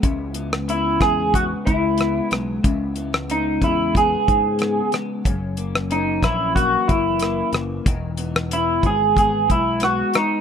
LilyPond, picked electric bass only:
\new Staff \with { instrumentName = "Picked electric bass" } { \clef bass \time 4/4 \key cis \dorian \tempo 4 = 92 cis,4. e,4 cis,4 b,,8 | cis,4. e,4 gis,4 r8 | fis,,4. ais,,4 fis,,4 fis,,8 | e,,4. gis,,4 b,,4 r8 | }